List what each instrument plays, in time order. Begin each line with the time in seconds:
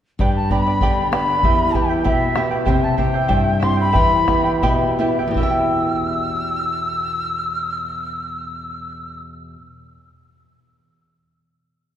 0.19 nylon-string guitar G2, charango G4 B4 D5 G5 B5, quena G5, bombo low
0.35 quena A5
0.50 nylon-string guitar B3 D4 G4, charango B4 D5 G5 B5, quena B5, bombo low
0.66 charango B4 D5 B5
0.81 nylon-string guitar D3, charango G4 B4 D5 G5 B5, bombo low
1.12 nylon-string guitar B3 D4 G4, charango B4 D5 G5 B5, quena B5, bombo rim
1.29 charango B4 D5 B5
1.43 nylon-string guitar E2, charango E4 G4 B4 E5 G5, bombo low
1.74 nylon-string guitar B3 E4 G4, charango E4 B4 E5 G5, quena G5, bombo low
1.89 charango E4 B4 G5
2.04 nylon-string guitar B2, charango E4 G4 B4 E5 G5, quena E5, bombo low
2.36 nylon-string guitar B3 E4 G4, charango E4 B4 E5 G5, bombo rim
2.51 charango E4 B4 G5
2.65 nylon-string guitar C3, charango E4 G4 C5 E5 G5, quena G5, bombo low
2.83 quena A5
2.97 nylon-string guitar C4 E4 G4, charango E4 C5 E5 G5, quena G5, bombo low
3.14 charango E4 C5 G5
3.28 nylon-string guitar G2, charango E4 G4 C5 E5 G5, bombo low
3.60 nylon-string guitar C4 E4 G4, charango E4 C5 E5 G5, quena C6, bombo rim
3.77 charango E4 C5 G5, quena B5
3.92 nylon-string guitar E3, charango E4 G4 B4 E5 G5, bombo low
4.27 nylon-string guitar B3 E4 G4, charango E4 B4 E5 G5, bombo rim, bombo low
4.44 charango E4 B4 G5
4.62 nylon-string guitar B2, charango E4 G4 B4 E5 G5, bombo low
4.99 nylon-string guitar B3 E4 G4, charango E4 B4 E5 G5
5.19 charango E4 B4 G5
5.28 nylon-string guitar E2 B2, charango G4
5.34 nylon-string guitar E4 G4, charango E5, quena E6, bombo low
5.40 charango E4, nylon-string guitar B4 G5
5.46 charango B4
5.50 charango G5